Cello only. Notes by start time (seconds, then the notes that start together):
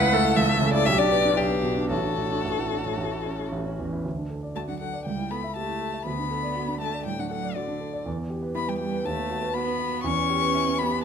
Already playing: B4
0.13 A4
0.86 G4
1.37 D4
1.90 F#4
4.55 A3
4.68 F#3
4.81 F#3
5.06 G3
5.31 B3
5.56 A3
6.06 B3
6.80 A3
7.06 G3
7.20 F#3
7.32 F#3
7.56 D3
8.55 B3
8.67 G3
8.81 G3
9.05 A3
9.56 B3
10.05 C#4
10.81 B3